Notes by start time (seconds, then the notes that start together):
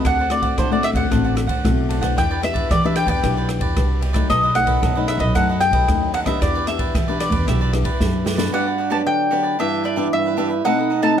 Already playing: A3 C4 F#4
0.04 D2 D3 D4 C5 D5 F#5, kick, cross-stick, ride
0.19 C5 D5 F#5
0.30 A3 C4 F#4 D5, muted cavaquinho stroke, cross-stick, ride
0.42 C5 D5 F#5, kick, ride
0.58 A2 D3 D4 C5 D5 F#5, kick, cross-stick, ride
0.71 A3 C4 F#4 C5 D5 F#5
0.83 E5, cross-stick, ride
0.93 D2 C5 D5 F#5, kick, ride
1.11 A1 D3 A3 C4 D4 F#4 C5 D5 F#5, kick, cross-stick, ride
1.24 C5 D5 F#5
1.36 muted cavaquinho stroke, cross-stick, ride
1.46 D2 C5 D5 F#5, kick, ride
1.64 B1 A2 A3 C4 F#4, kick, cross-stick, ride
1.89 D4 C5 D5 F#5, ride
2.01 B3 D4 G4 C5 D5 F#5, kick, cross-stick, ride
2.17 E2 E3 E4 G4 B4 D5 G5, kick, cross-stick, ride
2.31 G4 B4 D5
2.42 B3 D4 G4 E5, muted cavaquinho stroke, cross-stick, ride
2.54 G4 B4 D5, kick, ride
2.69 B2 E3 E4 G4 B4 D5, kick, cross-stick, ride
2.84 B3 D4 G4 B4 D5 E5
2.96 G5, cross-stick, ride
3.06 E2 G4 B4 D5 G5, kick, ride
3.23 B1 E3 B3 D4 E4 G4 B4 D5, kick, cross-stick, ride
3.37 G4 B4 D5
3.49 muted cavaquinho stroke, cross-stick, ride
3.59 E2 G4 B4 D5, kick, ride
3.76 C2 B2 B3 D4 G4, kick, cross-stick, ride
4.01 E4 G4 B4 D5, ride
4.13 F#3 A3 D#4 G4 B4 D5, kick, cross-stick, ride
4.29 B1 B2 D#4 A4 B4 D#5, kick, cross-stick, ride
4.43 A4 B4 D#5
4.55 F#3 A3 D#4 F#5, muted cavaquinho stroke, cross-stick, ride
4.66 A4 B4 D#5, kick, ride
4.82 F#2 B2 D#4 A4 B4 D#5, kick, cross-stick, ride
4.95 F#3 A3 D#4 A4 B4 D#5
5.08 E5, cross-stick, ride
5.18 B1 A4 B4 D#5, kick, ride
5.35 F#2 B2 F#3 A3 D#4 A4 B4 D#5 F#5, kick, cross-stick, ride
5.49 A4 B4 D#5
5.60 G5, muted cavaquinho stroke, cross-stick, ride
5.71 B1 B4 D#5, kick, ride
5.75 A4
5.88 D#2 F#2 F#3 A3 D#4, kick, cross-stick, ride
6.14 D#4 A4 B4 D#5 F#5, ride
6.26 B3 D4 G4 A4 B4 D#5 E5, kick, cross-stick, ride
6.41 E2 E3 E4 G4 B4 D5, kick, cross-stick, ride
6.55 G4 B4 D5
6.67 B3 D4 G4 E5, muted cavaquinho stroke, cross-stick, ride
6.79 G4 B4 D5, kick, ride
6.95 B2 E3 E4 G4 B4 D5, kick, cross-stick, ride
7.08 B3 D4 G4 B4 D5
7.20 D5, cross-stick, ride
7.30 E2 G4 B4 D5, kick, ride
7.47 B1 E3 B3 D4 E4 G4 B4 D5 E5, kick, cross-stick, ride
7.61 G4 B4 D5
7.73 B3 D4 G4, muted cavaquinho stroke, cross-stick, ride
7.83 E2 G4 B4 D5, kick, ride
8.00 F#2 B2 B3 D4 G4, kick, snare
8.25 E4 G4 B4 D5, snare
8.37 B3 D4 F#4 G4 B4 D5, snare
8.53 G2 D4 F#4 G4 B4 D5 F#5
8.66 G4 B4 D5
8.78 F#4 G4 B4 D5
8.90 F#3 B3 D4 F#4 G4 B4 D5 A5
9.06 D3 G5
9.31 F#3 B3 D4 F#4 G4 B4 D5
9.43 G4 B4 D5
9.59 G2 E3 B3 D4 E4 G4 B4 E5
9.84 D4 G4 B4 D5 E5
9.96 E3 B3 D4 G4 B4 E5
10.12 G2 E5
10.26 G4 B4 E5
10.37 E3 B3 D4 G4 B4 E5
10.49 G4 B4 E5
10.65 B2 A3 C4 D#4 A4 B4 D#5 F#5
10.78 A4 B4 D#5
10.90 D#4 A4 B4 D#5
11.02 A3 C4 D#4 A4 B4 D#5 A5